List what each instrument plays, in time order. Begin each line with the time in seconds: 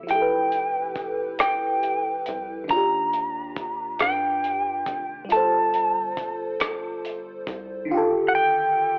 Already playing: lead electric guitar E5
0.03 fm electric piano F3 E4
0.09 analog synth bass F1, fm electric piano G4, lead electric guitar G5, closed hi-hat
0.15 fm electric piano A4
0.22 fm electric piano B4
0.52 closed hi-hat
0.96 kick, closed hi-hat
1.39 lead electric guitar G5, cross-stick, closed hi-hat
1.83 closed hi-hat
2.26 analog synth bass C2, closed hi-hat
2.64 fm electric piano D#3 D4
2.69 analog synth bass D#2, fm electric piano F4, lead electric guitar A#5, kick, closed hi-hat
2.76 fm electric piano G4
3.13 closed hi-hat
3.56 kick, closed hi-hat
3.99 analog synth bass G2, lead electric guitar G5, cross-stick, closed hi-hat
4.44 closed hi-hat
4.86 analog synth bass F1, kick, closed hi-hat
5.25 fm electric piano G3
5.29 analog synth bass G1, fm electric piano F4 A4, lead electric guitar A5, closed hi-hat
5.37 fm electric piano C5
5.74 closed hi-hat
6.17 kick, closed hi-hat
6.60 cross-stick, closed hi-hat
7.05 closed hi-hat
7.47 analog synth bass C2, kick, closed hi-hat
7.85 fm electric piano D3 D#3
7.91 fm electric piano F4 G4
7.97 fm electric piano A4
8.29 lead electric guitar F#5
8.35 lead electric guitar G5